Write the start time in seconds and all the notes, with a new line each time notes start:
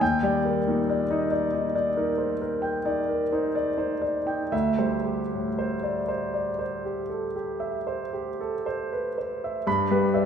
0.01 D#2 G5
0.23 G3 D5
0.45 A#4
0.67 A#2 D#4
0.89 D5
1.10 D#4 D#5
1.31 D5
1.54 D#4 D#5
1.75 D5
1.97 D#4 A#4
2.18 C5
2.41 A#4
2.62 G5
2.85 D#4 D5
3.09 A#4
3.32 D#4 C5
3.55 D5
3.77 D#4 C5
4.02 D5
4.26 D#4 G5
4.52 D2 E5
4.78 G3 C5
5.04 G4
5.33 A2
5.58 C5
5.83 D5
6.08 C5
6.34 D5
6.59 C5
6.85 G4
7.09 A4
7.36 G4
7.60 E5
7.87 C5
8.13 G4
8.41 A4
8.66 C5
8.93 B4
9.18 C5
9.44 E5
9.67 G2 B5
9.91 G3 B4
10.14 D5 E5